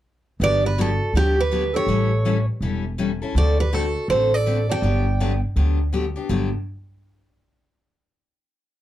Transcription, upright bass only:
0.40 G1
1.13 D2
1.87 A1
2.61 E1
3.35 D2
4.08 A1
4.82 G1
5.56 D2
6.29 G1

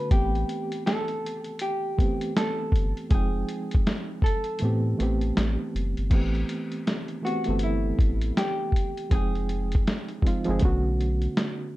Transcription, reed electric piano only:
Already playing: D3 A3 B3 C#4 F#4
0.10 E3 A3 B3 C4
0.15 G4
1.97 E3 A3 B3 C4
2.02 G4
3.10 F3 G#3 C4 D#4
3.15 G5
4.59 E3 A3 B3 C4
4.65 G4
4.97 E3 A3 B3 C4
5.03 G4
6.10 E3 A3 B3 C4
6.15 G4
7.22 E3 A3 B3
7.26 C4 G4
7.45 E3 A3 B3 C4
7.50 A4
9.09 F3 G#3 C4
9.14 D#4 G5
10.22 F3 G#3 C4 D#4
10.27 F4
10.45 F3 G#3 C4
10.49 D#4 G#4
10.60 D3 A3 B3 C#4
10.65 F#4

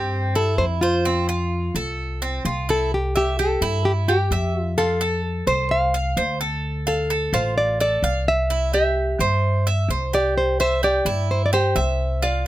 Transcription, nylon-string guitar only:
Already playing: G4
0.36 A4
0.58 C5
0.81 F4
2.70 A4
2.94 G4
3.17 G4
3.40 A4
3.85 G4
4.08 G4
4.62 F4
4.78 A4
5.47 C5
5.71 F5
6.88 A4
7.34 C5
7.58 D5
7.81 D5
8.28 E5
8.74 E5
10.15 D5
10.38 C5
10.61 C5
10.84 D5
11.31 C5
11.46 D5
11.54 C5
12.24 D5

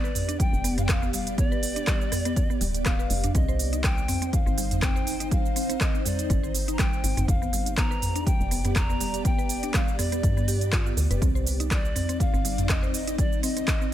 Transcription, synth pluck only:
0.04 B4
0.28 D4
0.40 G3
0.64 B3
0.78 B3
1.02 B3
1.14 G3
1.38 B3
1.52 B4
1.76 D4
1.87 G3
2.12 B3
2.25 B3
2.50 B3
2.61 G3
2.86 B3
2.99 B4
3.24 D4
3.35 C4
3.48 C5
3.73 D#4
3.84 G3
4.08 C4
4.22 C4
4.46 C4
4.58 G3
4.82 C4
4.96 C5
5.20 D#4
5.31 G3
5.56 C4
5.69 C4
5.94 C4
6.05 G3
6.30 C4
6.43 C5
6.68 D#4
6.79 G3
7.04 C4
7.17 C4
7.42 B3
7.53 G3
7.77 B3
7.91 B4
8.16 D4
8.27 G3
8.51 B3
8.65 B3
8.89 B3
9.01 G3
9.25 B3
9.38 B4
9.63 D4
9.74 G3
9.99 B3
10.12 B3
10.37 B3
10.48 G4
10.73 F4
10.86 F4
11.11 B4
11.22 C4
11.35 C5
11.60 D#4
11.71 G3
11.95 C4
12.09 C4
12.34 C4
12.45 G3
12.69 C4
12.83 C5
13.08 D#4
13.19 G3
13.43 C4
13.57 C4
13.81 C4

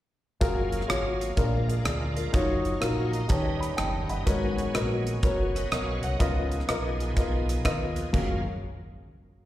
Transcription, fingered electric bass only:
0.41 F#1
0.90 G#1
1.37 A#1
1.86 D2
2.34 F#1
2.82 A#1
3.30 D#2
3.79 F#1
4.10 G1
4.27 G#1
4.75 A#1
5.23 F#1
5.72 B1
6.03 C2
6.20 C#2
6.69 B1
7.17 B1
7.65 D#2
8.14 F#1

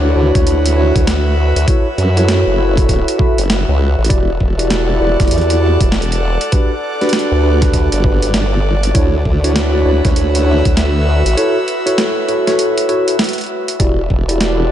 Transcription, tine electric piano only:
Already playing: D4 E4 F#4 C#5
0.15 D4 E4 F#4 C#5
0.34 D4 E4 F#4 C#5
0.76 D4 E4 F#4 C#5
1.68 E4 F#4 A4 C#5
2.17 E4 F#4 A4 C#5
2.58 E4 F#4 A4 C#5
2.77 E4 F#4 A4 C#5
3.18 E4 F#4 A4 E5
4.09 E4 F#4 G4 D5
4.58 E4 F#4 G4 D5
5.00 E4 F#4 G4 D5
5.19 E4 F#4 G4 D5
5.61 E4 F#4 G4 D5
6.52 D4 F#4 G4 B4
7.01 D4 F#4 G4 B4
7.43 D4 F#4 G4 B4
7.62 D4 F#4 G4 B4
8.03 D4 F#4 G4 B4
8.94 D4 E4 F#4 C#5
9.44 D4 E4 F#4 C#5
9.85 D4 E4 F#4 C#5
10.05 D4 E4 F#4 C#5
10.46 D4 E4 F#4 C#5
11.37 E4 F#4 A4 C#5
11.86 E4 F#4 A4 C#5
12.28 E4 F#4 A4 C#5
12.47 E4 F#4 A4 C#5
12.89 E4 F#4 A4 C#5
13.79 E4 F#4 G4 D5
14.29 E4 F#4 G4 D5

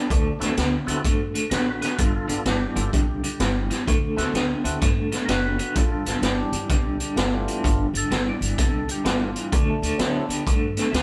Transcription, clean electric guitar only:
0.10 D3 A3
0.41 D3 A3
0.57 D3 B3
0.88 D3 B3
1.05 D3 A3
1.34 D3 A3
1.51 D3 B3
1.81 D3 B3
1.98 G2 D3
2.28 G2 D3
2.45 G2 E3
2.76 G2 E3
2.93 G2 D3
3.23 G2 D3
3.40 G2 E3
3.70 G2 E3
3.87 D3 A3
4.18 D3 A3
4.35 D3 B3
4.64 D3 B3
4.81 D3 A3
5.12 D3 A3
5.28 D3 B3
5.59 D3 B3
5.76 G2 D3
6.07 G2 D3
6.23 G2 E3
6.53 G2 E3
6.70 G2 D3
7.01 G2 D3
7.17 G2 E3
7.48 G2 E3
7.64 G2 D3
7.94 G2 D3
8.11 G2 E3
8.42 G2 E3
8.58 G2 D3
8.88 G2 D3
9.05 G2 E3
9.36 G2 E3
9.52 D3 A3
9.83 D3 A3
9.99 D3 B3
10.29 D3 B3
10.47 D3 A3
10.77 D3 A3
10.93 D3 B3

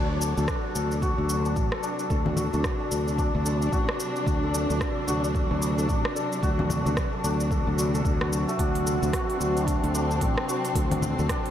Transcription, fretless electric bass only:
Already playing: D2
0.37 D2
0.75 D2
1.18 D2
1.56 A1
2.10 D2
2.54 D2
2.91 D2
3.35 D2
3.72 A1
4.26 D2
4.70 D2
5.08 D2
5.51 D2
5.89 A1
6.43 D2
6.86 D2
7.24 D2
7.67 D2
8.05 D2
8.59 D2
9.02 D2
9.40 D2
9.84 D2
10.21 A1
10.75 D2
11.19 D2

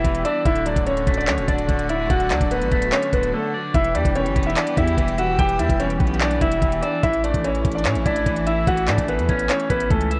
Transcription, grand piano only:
Already playing: E4 E5
0.25 D4 D5
0.45 E4 E5
0.66 D4 D5
0.87 C#4 C#5
1.17 D4 D5
1.28 C#4 C#5
1.48 D4 D5
1.89 E4 E5
2.10 F#4 F#5
2.30 D4 D5
2.51 B3 B4
2.92 C#4 C#5
3.13 B3 B4
3.33 A3 A4
3.74 E4 E5
3.95 D4 D5
4.15 C#4 C#5
4.46 E4 E5
4.57 D4 D5
4.77 E4 E5
5.18 F#4 F#5
5.39 G4 G5
5.59 E4 E5
5.80 C#4 C#5
6.21 D4 D5
6.41 E4 E5
6.82 D4 D5
7.03 E4 E5
7.24 D4 D5
7.44 C#4 C#5
7.75 D4 D5
7.85 C#4 C#5
8.06 D4 D5
8.47 E4 E5
8.67 F#4 F#5
8.88 D4 D5
9.09 B3 B4
9.50 C#4 C#5
9.70 B3 B4
9.91 A3 A4

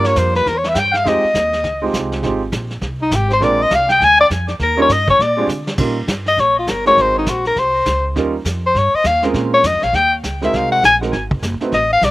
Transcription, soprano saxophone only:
0.06 C#5
0.18 C5
0.36 B4
0.49 A#4
0.58 C#5
0.69 E5
0.79 G5
0.97 F5
1.08 D#5
3.02 D#4
3.15 G4
3.33 C5
3.44 D5
3.63 D#5
3.75 F5
3.92 G5
4.04 G#5
4.21 D5
4.63 A#4
4.82 C#5
4.93 D#5
5.10 C#5
5.22 D5
6.28 D#5
6.40 C#5
6.59 F4
6.70 A#4
6.87 C#5
7.01 C5
7.19 D#4
7.29 F#4
7.47 A#4
7.59 C5
8.66 C5
8.78 C#5
8.95 D#5
9.06 F5
9.54 C#5
9.67 D#5
9.83 F5
9.95 G5
10.44 E5
10.56 F5
10.72 F#5
10.85 G#5
11.74 D#5
11.93 F5
12.04 D5

